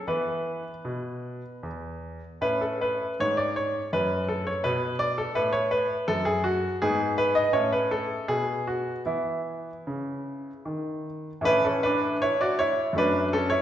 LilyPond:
<<
  \new Staff \with { instrumentName = "Grand piano" } { \time 3/4 \key b \dorian \tempo 4 = 80 b'2 r4 | b'16 a'16 b'8 cis''16 d''16 cis''8 b'8 a'16 cis''16 | b'8 d''16 a'16 b'16 cis''16 b'8 a'16 gis'16 fis'8 | \key e \major gis'8 b'16 dis''16 cis''16 b'16 a'8 gis'8 fis'8 |
e'2~ e'8 r8 | \key a \major <e' b'>16 <cis' a'>16 <d' b'>8 <e' cis''>16 <fis' d''>16 <e' cis''>8 <d' b'>8 <cis' a'>16 <e' cis''>16 | }
  \new Staff \with { instrumentName = "Grand piano" } { \clef bass \time 3/4 \key b \dorian << { r2. | cis'2 cis'4 | b2. | \key e \major b4 cis'4 b4 |
b2. | \key a \major <a, e a cis'>2 <fis, fis a cis'>4 | } \\ { <e b e'>4 b,4 e,4 | a,4 gis,4 fis,4 | b,4 a,4 fis,4 | gis,4 a,4 b,4 |
e4 cis4 dis4 | r2. | } >> }
>>